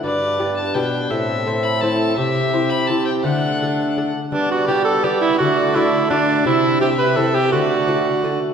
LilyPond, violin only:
\new Staff \with { instrumentName = "Violin" } { \time 3/4 \key g \major \tempo 4 = 168 d''4. a''8 g''4 | e''4. b''8 a''4 | e''4. b''8 a''8 g''8 | fis''2~ fis''8 r8 |
d''2 d''4 | d''2 d''4 | e''2. | d''2~ d''8 r8 | }